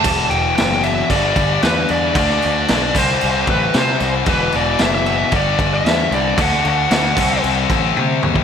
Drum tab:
CC |x-x-x-x-x-x-x-x-|x-x-x-x-x-x-x-x-|x-x-x-x-x-x-x-x-|x-x-x-x-x-x-----|
SD |----oo------o---|-o--oo------o---|----o-------o---|-o--o-----------|
T1 |----------------|----------------|----------------|------------o---|
T2 |----------------|----------------|----------------|--------------o-|
BD |o-------o-o-----|o-----o---o-----|o-------o-o-----|o-----o---o----o|